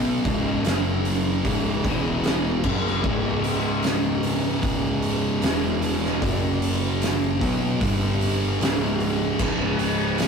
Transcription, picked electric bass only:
Already playing: B1
0.25 C#1
0.65 F#1
1.46 C#1
1.85 E1
2.65 F#1
3.04 C#1
5.42 E1
6.22 F#1
7.42 B1
7.81 G1
8.60 C#1
9.40 C#1

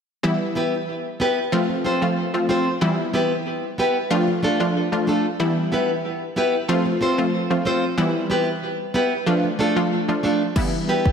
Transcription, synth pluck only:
0.23 E3 G3 B3 E4
1.52 F3 A3 C4 F4
2.02 F3 A3 C4 F4
2.34 F3 A3 C4 F4
2.81 E3 G3 B3 E4
4.10 F3 A3 D4 F4
4.60 F3 A3 D4 F4
4.92 F3 A3 D4 F4
5.40 E3 G3 B3 E4
6.68 F3 A3 C4 F4
7.18 F3 A3 C4 F4
7.50 F3 A3 C4 F4
7.98 E3 G3 B3 E4
9.26 F3 A3 D4 F4
9.76 F3 A3 D4 F4
10.08 F3 A3 D4 F4
10.56 E3 G3 B3 E4

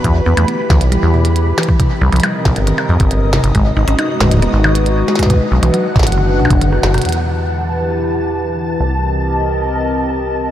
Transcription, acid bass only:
0.04 E2
0.26 E2
0.37 E2
0.70 D2
0.81 B1
1.03 E2
2.02 C2
2.13 C2
2.45 A#1
2.56 G1
2.89 F2
3.00 G1
3.44 G1
3.55 G#1
3.77 G#1
3.88 G#1
4.20 F#1
4.31 D#1
4.53 G#1
5.52 B1
5.63 B1
5.96 A1
6.07 F#1
6.40 B1
6.50 F#1
6.83 F#1
7.05 E2
8.80 C2

